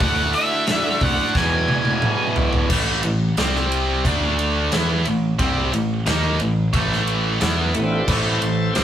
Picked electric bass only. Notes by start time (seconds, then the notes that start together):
0.01 D2
1.01 C2
1.35 E2
2.70 A1
3.04 A1
3.38 C2
4.05 D2
4.72 E2
5.06 A1
5.39 C2
5.73 A1
6.06 D#2
6.39 A1
6.74 A1
7.41 E2
7.75 A1
8.08 A1
8.41 A1
8.76 C2